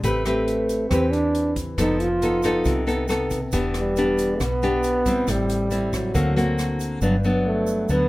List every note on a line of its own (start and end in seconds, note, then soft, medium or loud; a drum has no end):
0.03 0.87 A1 medium
0.03 0.89 A3 medium
0.03 0.22 C4 medium
0.03 0.22 G4 medium
0.03 0.22 B4 medium
0.03 kick medium
0.03 closed hi-hat medium
0.03 shaker medium
0.25 0.87 A3 medium
0.25 0.87 C4 medium
0.25 0.88 G4 medium
0.25 0.88 B4 medium
0.25 cross-stick medium
0.25 closed hi-hat soft
0.25 shaker soft
0.47 closed hi-hat soft
0.69 closed hi-hat soft
0.69 shaker medium
0.89 1.74 E2 medium
0.89 1.76 E3 soft
0.89 1.12 C4 medium
0.89 1.75 C4 soft
0.89 1.75 G4 medium
0.89 1.75 B4 medium
0.89 kick medium
0.89 cross-stick medium
0.89 closed hi-hat soft
0.89 shaker medium
1.11 1.55 D4 medium
1.11 closed hi-hat soft
1.11 shaker soft
1.34 closed hi-hat soft
1.56 kick soft
1.56 closed hi-hat soft
1.56 shaker medium
1.78 2.61 F1 loud
1.78 2.63 F3 medium
1.78 2.06 B3 medium
1.78 2.06 D#4 medium
1.78 2.02 D#4 medium
1.78 2.06 A4 medium
1.78 kick medium
1.78 cross-stick medium
1.78 closed hi-hat medium
1.78 shaker medium
2.00 2.87 F4 loud
2.00 closed hi-hat soft
2.00 shaker soft
2.22 2.40 B3 soft
2.22 2.40 D#4 medium
2.22 2.41 A4 medium
2.22 closed hi-hat soft
2.22 shaker soft
2.43 2.84 B3 medium
2.43 2.84 D#4 medium
2.43 2.84 A4 medium
2.43 cross-stick medium
2.43 closed hi-hat soft
2.43 shaker medium
2.65 3.49 C2 medium
2.65 3.51 C3 medium
2.65 kick medium
2.65 closed hi-hat soft
2.65 shaker medium
2.86 3.05 B3 medium
2.86 3.05 D#4 medium
2.86 3.06 A4 medium
2.86 closed hi-hat soft
2.86 shaker soft
3.08 3.38 B3 medium
3.08 3.38 D#4 medium
3.08 3.38 A4 medium
3.08 cross-stick medium
3.08 closed hi-hat soft
3.08 shaker medium
3.30 kick medium
3.30 closed hi-hat soft
3.30 shaker medium
3.52 4.36 E1 loud
3.52 4.38 E3 medium
3.52 3.93 B3 medium
3.52 3.93 D4 medium
3.52 3.93 G4 medium
3.52 kick medium
3.52 closed hi-hat medium
3.52 shaker medium
3.74 cross-stick medium
3.74 closed hi-hat soft
3.74 shaker soft
3.80 4.45 G3 medium
3.96 4.40 B3 soft
3.96 4.40 D4 medium
3.96 4.41 G4 medium
3.96 closed hi-hat soft
3.96 shaker soft
4.18 closed hi-hat soft
4.18 shaker medium
4.40 5.23 B1 medium
4.40 5.25 B2 soft
4.40 5.32 B3 loud
4.40 kick soft
4.40 cross-stick medium
4.40 closed hi-hat soft
4.40 shaker medium
4.62 5.02 B3 medium
4.62 5.02 D4 medium
4.62 5.03 G4 medium
4.62 closed hi-hat soft
4.62 shaker soft
4.83 closed hi-hat soft
4.83 shaker medium
5.06 5.68 G3 medium
5.06 5.68 C4 medium
5.06 5.68 E4 medium
5.06 kick medium
5.06 closed hi-hat soft
5.06 shaker medium
5.27 6.11 A1 medium
5.27 6.12 A2 medium
5.27 5.96 G3 medium
5.27 kick medium
5.27 cross-stick medium
5.27 closed hi-hat medium
5.27 shaker medium
5.49 closed hi-hat soft
5.49 shaker soft
5.71 6.13 G3 medium
5.71 6.13 C4 medium
5.71 6.13 E4 medium
5.71 closed hi-hat soft
5.71 shaker medium
5.93 6.81 F#3 medium
5.93 kick soft
5.93 cross-stick medium
5.93 closed hi-hat soft
5.93 shaker medium
6.14 6.98 D2 medium
6.14 6.99 D3 medium
6.14 6.33 A#3 medium
6.14 6.33 C4 medium
6.14 6.33 F#4 medium
6.14 kick medium
6.14 closed hi-hat soft
6.14 shaker medium
6.36 6.98 A#3 medium
6.36 6.99 C4 medium
6.36 6.99 F#4 medium
6.36 closed hi-hat soft
6.36 shaker soft
6.58 cross-stick medium
6.58 closed hi-hat soft
6.58 shaker medium
6.80 closed hi-hat soft
6.80 shaker medium
7.01 7.85 G1 medium
7.01 7.87 G2 medium
7.01 7.15 F#3 medium
7.01 7.15 B3 medium
7.01 7.15 D4 medium
7.01 shaker medium
7.24 7.86 F#3 medium
7.24 7.86 B3 medium
7.24 7.87 D4 medium
7.24 shaker soft
7.46 7.94 A3 medium
7.67 shaker medium
7.89 8.09 D2 medium
7.89 8.09 D3 medium
7.89 8.09 F#3 medium
7.89 8.09 B3 medium
7.89 8.09 D4 medium
7.89 shaker medium